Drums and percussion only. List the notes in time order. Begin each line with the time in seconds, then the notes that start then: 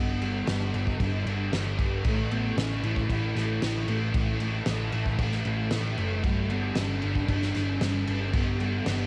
0.22 crash
0.47 snare, crash
0.74 crash
0.87 kick
1.00 kick, crash
1.27 crash
1.53 snare, crash
1.79 kick, crash
2.04 kick, crash
2.31 crash
2.58 snare, crash
2.84 crash
2.96 kick
3.10 kick, crash
3.36 snare, crash
3.62 snare, crash
3.88 crash
4.14 kick, crash
4.40 crash
4.66 snare, crash
4.92 crash
5.06 kick
5.18 kick, crash
5.32 snare
5.45 crash
5.71 snare, crash
5.98 crash
6.23 kick, crash
6.50 crash
6.75 snare, crash
7.02 crash
7.15 kick
7.28 kick, crash
7.42 snare
7.54 snare, crash
7.81 snare, crash
8.07 crash
8.33 kick, crash
8.60 crash
8.86 snare, crash